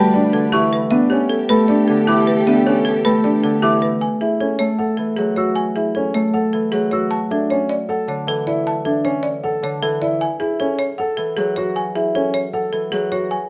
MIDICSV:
0, 0, Header, 1, 7, 480
1, 0, Start_track
1, 0, Tempo, 387097
1, 1141, Time_signature, 4, 2, 24, 8
1, 16731, End_track
2, 0, Start_track
2, 0, Title_t, "Xylophone"
2, 0, Program_c, 0, 13
2, 0, Note_on_c, 0, 81, 92
2, 254, Note_off_c, 0, 81, 0
2, 661, Note_on_c, 0, 85, 89
2, 973, Note_off_c, 0, 85, 0
2, 1143, Note_on_c, 0, 76, 76
2, 1454, Note_off_c, 0, 76, 0
2, 1861, Note_on_c, 0, 83, 85
2, 2173, Note_off_c, 0, 83, 0
2, 2582, Note_on_c, 0, 86, 83
2, 2893, Note_off_c, 0, 86, 0
2, 3058, Note_on_c, 0, 76, 65
2, 3372, Note_off_c, 0, 76, 0
2, 3781, Note_on_c, 0, 83, 84
2, 4093, Note_off_c, 0, 83, 0
2, 4502, Note_on_c, 0, 86, 81
2, 4813, Note_off_c, 0, 86, 0
2, 5227, Note_on_c, 0, 76, 57
2, 5535, Note_off_c, 0, 76, 0
2, 6668, Note_on_c, 0, 88, 72
2, 6976, Note_off_c, 0, 88, 0
2, 7146, Note_on_c, 0, 76, 59
2, 7455, Note_off_c, 0, 76, 0
2, 8592, Note_on_c, 0, 88, 76
2, 8897, Note_off_c, 0, 88, 0
2, 9063, Note_on_c, 0, 76, 62
2, 9374, Note_off_c, 0, 76, 0
2, 10978, Note_on_c, 0, 76, 65
2, 11292, Note_off_c, 0, 76, 0
2, 12900, Note_on_c, 0, 76, 63
2, 13213, Note_off_c, 0, 76, 0
2, 14823, Note_on_c, 0, 76, 61
2, 15134, Note_off_c, 0, 76, 0
2, 16731, End_track
3, 0, Start_track
3, 0, Title_t, "Marimba"
3, 0, Program_c, 1, 12
3, 0, Note_on_c, 1, 71, 95
3, 173, Note_on_c, 1, 74, 66
3, 249, Note_off_c, 1, 71, 0
3, 413, Note_on_c, 1, 69, 67
3, 490, Note_off_c, 1, 74, 0
3, 649, Note_on_c, 1, 67, 91
3, 730, Note_off_c, 1, 69, 0
3, 901, Note_on_c, 1, 71, 71
3, 969, Note_off_c, 1, 67, 0
3, 1123, Note_on_c, 1, 76, 88
3, 1213, Note_off_c, 1, 71, 0
3, 1362, Note_on_c, 1, 67, 72
3, 1447, Note_off_c, 1, 76, 0
3, 1606, Note_on_c, 1, 69, 74
3, 1687, Note_off_c, 1, 67, 0
3, 1850, Note_on_c, 1, 71, 85
3, 1928, Note_off_c, 1, 69, 0
3, 2086, Note_on_c, 1, 74, 67
3, 2169, Note_off_c, 1, 71, 0
3, 2327, Note_on_c, 1, 69, 64
3, 2408, Note_off_c, 1, 74, 0
3, 2571, Note_on_c, 1, 67, 90
3, 2648, Note_off_c, 1, 69, 0
3, 2818, Note_on_c, 1, 71, 72
3, 2889, Note_off_c, 1, 67, 0
3, 3065, Note_on_c, 1, 76, 80
3, 3132, Note_off_c, 1, 71, 0
3, 3306, Note_on_c, 1, 67, 63
3, 3375, Note_off_c, 1, 76, 0
3, 3532, Note_on_c, 1, 69, 72
3, 3615, Note_off_c, 1, 67, 0
3, 3780, Note_on_c, 1, 71, 84
3, 3850, Note_off_c, 1, 69, 0
3, 4018, Note_on_c, 1, 74, 65
3, 4093, Note_off_c, 1, 71, 0
3, 4260, Note_on_c, 1, 69, 66
3, 4332, Note_off_c, 1, 74, 0
3, 4493, Note_on_c, 1, 67, 83
3, 4573, Note_off_c, 1, 69, 0
3, 4737, Note_on_c, 1, 71, 72
3, 4810, Note_off_c, 1, 67, 0
3, 4977, Note_on_c, 1, 80, 72
3, 5052, Note_off_c, 1, 71, 0
3, 5221, Note_on_c, 1, 68, 56
3, 5292, Note_off_c, 1, 80, 0
3, 5462, Note_on_c, 1, 69, 63
3, 5533, Note_off_c, 1, 68, 0
3, 5691, Note_on_c, 1, 73, 77
3, 5774, Note_off_c, 1, 69, 0
3, 5935, Note_on_c, 1, 78, 52
3, 6010, Note_off_c, 1, 73, 0
3, 6165, Note_on_c, 1, 69, 58
3, 6251, Note_off_c, 1, 78, 0
3, 6405, Note_on_c, 1, 68, 72
3, 6487, Note_off_c, 1, 69, 0
3, 6651, Note_on_c, 1, 73, 61
3, 6728, Note_off_c, 1, 68, 0
3, 6888, Note_on_c, 1, 80, 76
3, 6970, Note_off_c, 1, 73, 0
3, 7139, Note_on_c, 1, 68, 61
3, 7209, Note_off_c, 1, 80, 0
3, 7377, Note_on_c, 1, 69, 64
3, 7452, Note_off_c, 1, 68, 0
3, 7618, Note_on_c, 1, 73, 75
3, 7692, Note_off_c, 1, 69, 0
3, 7858, Note_on_c, 1, 78, 58
3, 7932, Note_off_c, 1, 73, 0
3, 8098, Note_on_c, 1, 69, 61
3, 8172, Note_off_c, 1, 78, 0
3, 8330, Note_on_c, 1, 68, 79
3, 8412, Note_off_c, 1, 69, 0
3, 8572, Note_on_c, 1, 73, 65
3, 8649, Note_off_c, 1, 68, 0
3, 8812, Note_on_c, 1, 81, 80
3, 8890, Note_off_c, 1, 73, 0
3, 9070, Note_on_c, 1, 69, 62
3, 9130, Note_off_c, 1, 81, 0
3, 9304, Note_on_c, 1, 73, 68
3, 9377, Note_off_c, 1, 69, 0
3, 9541, Note_on_c, 1, 74, 81
3, 9614, Note_off_c, 1, 73, 0
3, 9789, Note_on_c, 1, 78, 59
3, 9853, Note_off_c, 1, 74, 0
3, 10025, Note_on_c, 1, 73, 59
3, 10096, Note_off_c, 1, 78, 0
3, 10271, Note_on_c, 1, 69, 80
3, 10335, Note_off_c, 1, 73, 0
3, 10504, Note_on_c, 1, 74, 67
3, 10577, Note_off_c, 1, 69, 0
3, 10750, Note_on_c, 1, 81, 84
3, 10814, Note_off_c, 1, 74, 0
3, 10977, Note_on_c, 1, 69, 63
3, 11056, Note_off_c, 1, 81, 0
3, 11219, Note_on_c, 1, 73, 68
3, 11292, Note_off_c, 1, 69, 0
3, 11444, Note_on_c, 1, 74, 82
3, 11532, Note_off_c, 1, 73, 0
3, 11701, Note_on_c, 1, 78, 60
3, 11767, Note_off_c, 1, 74, 0
3, 11949, Note_on_c, 1, 73, 65
3, 12013, Note_off_c, 1, 78, 0
3, 12183, Note_on_c, 1, 69, 81
3, 12256, Note_off_c, 1, 73, 0
3, 12420, Note_on_c, 1, 74, 68
3, 12494, Note_off_c, 1, 69, 0
3, 12662, Note_on_c, 1, 80, 86
3, 12733, Note_off_c, 1, 74, 0
3, 12894, Note_on_c, 1, 68, 68
3, 12973, Note_off_c, 1, 80, 0
3, 13141, Note_on_c, 1, 69, 65
3, 13211, Note_off_c, 1, 68, 0
3, 13375, Note_on_c, 1, 73, 83
3, 13453, Note_off_c, 1, 69, 0
3, 13617, Note_on_c, 1, 78, 64
3, 13691, Note_off_c, 1, 73, 0
3, 13851, Note_on_c, 1, 69, 68
3, 13932, Note_off_c, 1, 78, 0
3, 14093, Note_on_c, 1, 68, 87
3, 14170, Note_off_c, 1, 69, 0
3, 14337, Note_on_c, 1, 73, 70
3, 14411, Note_off_c, 1, 68, 0
3, 14582, Note_on_c, 1, 80, 80
3, 14652, Note_off_c, 1, 73, 0
3, 14824, Note_on_c, 1, 68, 61
3, 14894, Note_off_c, 1, 80, 0
3, 15068, Note_on_c, 1, 69, 67
3, 15134, Note_off_c, 1, 68, 0
3, 15300, Note_on_c, 1, 73, 76
3, 15376, Note_off_c, 1, 69, 0
3, 15544, Note_on_c, 1, 78, 57
3, 15613, Note_off_c, 1, 73, 0
3, 15779, Note_on_c, 1, 69, 60
3, 15854, Note_off_c, 1, 78, 0
3, 16019, Note_on_c, 1, 68, 76
3, 16093, Note_off_c, 1, 69, 0
3, 16266, Note_on_c, 1, 73, 63
3, 16333, Note_off_c, 1, 68, 0
3, 16504, Note_on_c, 1, 80, 74
3, 16575, Note_off_c, 1, 73, 0
3, 16731, Note_off_c, 1, 80, 0
3, 16731, End_track
4, 0, Start_track
4, 0, Title_t, "Violin section"
4, 0, Program_c, 2, 48
4, 0, Note_on_c, 2, 55, 82
4, 0, Note_on_c, 2, 71, 80
4, 850, Note_off_c, 2, 71, 0
4, 852, Note_off_c, 2, 55, 0
4, 1144, Note_on_c, 2, 69, 72
4, 1147, Note_on_c, 2, 67, 73
4, 4693, Note_off_c, 2, 69, 0
4, 4695, Note_off_c, 2, 67, 0
4, 16731, End_track
5, 0, Start_track
5, 0, Title_t, "French horn"
5, 0, Program_c, 3, 60
5, 0, Note_on_c, 3, 66, 90
5, 854, Note_off_c, 3, 66, 0
5, 1141, Note_on_c, 3, 67, 81
5, 4691, Note_off_c, 3, 67, 0
5, 16731, End_track
6, 0, Start_track
6, 0, Title_t, "Grand piano"
6, 0, Program_c, 4, 0
6, 0, Note_on_c, 4, 67, 89
6, 189, Note_on_c, 4, 62, 75
6, 255, Note_off_c, 4, 67, 0
6, 496, Note_off_c, 4, 62, 0
6, 660, Note_on_c, 4, 64, 92
6, 973, Note_off_c, 4, 64, 0
6, 1146, Note_on_c, 4, 62, 72
6, 1384, Note_on_c, 4, 61, 88
6, 1455, Note_off_c, 4, 62, 0
6, 1694, Note_off_c, 4, 61, 0
6, 1862, Note_on_c, 4, 69, 81
6, 2104, Note_on_c, 4, 62, 69
6, 2173, Note_off_c, 4, 69, 0
6, 2414, Note_off_c, 4, 62, 0
6, 2581, Note_on_c, 4, 64, 90
6, 2893, Note_off_c, 4, 64, 0
6, 3056, Note_on_c, 4, 62, 66
6, 3300, Note_on_c, 4, 61, 85
6, 3372, Note_off_c, 4, 62, 0
6, 3613, Note_off_c, 4, 61, 0
6, 3775, Note_on_c, 4, 69, 85
6, 4026, Note_on_c, 4, 62, 65
6, 4091, Note_off_c, 4, 69, 0
6, 4335, Note_off_c, 4, 62, 0
6, 4504, Note_on_c, 4, 64, 78
6, 4814, Note_off_c, 4, 64, 0
6, 5227, Note_on_c, 4, 64, 62
6, 5464, Note_on_c, 4, 61, 75
6, 5535, Note_off_c, 4, 64, 0
6, 5774, Note_off_c, 4, 61, 0
6, 5943, Note_on_c, 4, 69, 74
6, 6254, Note_off_c, 4, 69, 0
6, 6663, Note_on_c, 4, 66, 75
6, 6974, Note_off_c, 4, 66, 0
6, 7153, Note_on_c, 4, 64, 59
6, 7392, Note_on_c, 4, 61, 76
6, 7457, Note_off_c, 4, 64, 0
6, 7697, Note_off_c, 4, 61, 0
6, 7864, Note_on_c, 4, 69, 74
6, 8174, Note_off_c, 4, 69, 0
6, 8590, Note_on_c, 4, 66, 76
6, 8896, Note_off_c, 4, 66, 0
6, 9064, Note_on_c, 4, 62, 64
6, 9310, Note_on_c, 4, 61, 79
6, 9374, Note_off_c, 4, 62, 0
6, 9616, Note_off_c, 4, 61, 0
6, 9781, Note_on_c, 4, 69, 78
6, 10093, Note_off_c, 4, 69, 0
6, 10503, Note_on_c, 4, 64, 78
6, 10814, Note_off_c, 4, 64, 0
6, 10983, Note_on_c, 4, 62, 64
6, 11220, Note_on_c, 4, 61, 85
6, 11294, Note_off_c, 4, 62, 0
6, 11533, Note_off_c, 4, 61, 0
6, 11706, Note_on_c, 4, 69, 81
6, 12015, Note_off_c, 4, 69, 0
6, 12423, Note_on_c, 4, 64, 79
6, 12734, Note_off_c, 4, 64, 0
6, 12907, Note_on_c, 4, 64, 70
6, 13148, Note_on_c, 4, 61, 81
6, 13215, Note_off_c, 4, 64, 0
6, 13456, Note_off_c, 4, 61, 0
6, 13636, Note_on_c, 4, 69, 83
6, 13938, Note_off_c, 4, 69, 0
6, 14355, Note_on_c, 4, 66, 81
6, 14658, Note_off_c, 4, 66, 0
6, 14828, Note_on_c, 4, 64, 66
6, 15072, Note_on_c, 4, 61, 80
6, 15135, Note_off_c, 4, 64, 0
6, 15377, Note_off_c, 4, 61, 0
6, 15545, Note_on_c, 4, 69, 74
6, 15855, Note_off_c, 4, 69, 0
6, 16268, Note_on_c, 4, 66, 73
6, 16575, Note_off_c, 4, 66, 0
6, 16731, End_track
7, 0, Start_track
7, 0, Title_t, "Harp"
7, 0, Program_c, 5, 46
7, 0, Note_on_c, 5, 50, 77
7, 0, Note_on_c, 5, 52, 102
7, 0, Note_on_c, 5, 55, 88
7, 0, Note_on_c, 5, 57, 92
7, 0, Note_on_c, 5, 59, 92
7, 213, Note_off_c, 5, 59, 0
7, 398, Note_off_c, 5, 50, 0
7, 413, Note_on_c, 5, 50, 76
7, 633, Note_off_c, 5, 52, 0
7, 648, Note_on_c, 5, 52, 93
7, 1126, Note_on_c, 5, 59, 88
7, 1154, Note_off_c, 5, 52, 0
7, 1156, Note_off_c, 5, 50, 0
7, 1841, Note_off_c, 5, 57, 0
7, 1856, Note_on_c, 5, 57, 87
7, 2346, Note_on_c, 5, 50, 71
7, 2582, Note_on_c, 5, 52, 88
7, 3049, Note_off_c, 5, 59, 0
7, 3064, Note_on_c, 5, 59, 83
7, 3765, Note_off_c, 5, 57, 0
7, 3780, Note_on_c, 5, 57, 81
7, 4243, Note_off_c, 5, 50, 0
7, 4258, Note_on_c, 5, 50, 72
7, 4482, Note_off_c, 5, 52, 0
7, 4496, Note_on_c, 5, 52, 84
7, 4768, Note_off_c, 5, 55, 0
7, 4998, Note_off_c, 5, 52, 0
7, 4999, Note_off_c, 5, 50, 0
7, 5002, Note_off_c, 5, 59, 0
7, 5682, Note_off_c, 5, 57, 0
7, 5697, Note_on_c, 5, 57, 70
7, 6178, Note_on_c, 5, 52, 64
7, 6422, Note_on_c, 5, 54, 76
7, 7601, Note_off_c, 5, 57, 0
7, 7616, Note_on_c, 5, 57, 73
7, 8092, Note_off_c, 5, 52, 0
7, 8107, Note_on_c, 5, 52, 67
7, 8319, Note_off_c, 5, 54, 0
7, 8334, Note_on_c, 5, 54, 79
7, 8843, Note_off_c, 5, 52, 0
7, 10015, Note_on_c, 5, 50, 70
7, 10256, Note_on_c, 5, 52, 81
7, 11922, Note_off_c, 5, 50, 0
7, 11937, Note_on_c, 5, 50, 70
7, 12164, Note_off_c, 5, 52, 0
7, 12179, Note_on_c, 5, 52, 83
7, 12452, Note_off_c, 5, 57, 0
7, 12677, Note_off_c, 5, 54, 0
7, 12678, Note_off_c, 5, 50, 0
7, 12679, Note_off_c, 5, 52, 0
7, 13860, Note_on_c, 5, 52, 69
7, 14105, Note_on_c, 5, 54, 76
7, 15769, Note_off_c, 5, 52, 0
7, 15784, Note_on_c, 5, 52, 63
7, 16013, Note_off_c, 5, 54, 0
7, 16028, Note_on_c, 5, 54, 77
7, 16522, Note_off_c, 5, 52, 0
7, 16524, Note_off_c, 5, 54, 0
7, 16731, End_track
0, 0, End_of_file